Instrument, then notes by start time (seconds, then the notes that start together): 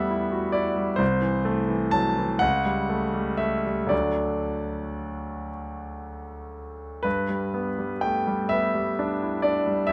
grand piano
Already playing: E2 G3 A3 B3 E5 F#5
0.10 E4
0.32 F#4
0.52 E4 D5
0.76 G3
0.96 C2 C5
1.22 E3
1.45 A3
1.69 E3
1.91 F#3 A5
2.18 E3
2.39 C#2 F#5
2.66 G3
2.89 A3
3.14 G3
3.37 A3 E5
3.66 G3
3.87 D2 F#3 A3 D4 D5
7.03 G2 B4
7.29 G3
7.54 B3
7.79 G3
8.01 A3 G5
8.27 G3
8.49 B3 E5
8.75 G3
8.99 D4
9.23 E4
9.42 D4 D5
9.66 G3
9.87 E2 E5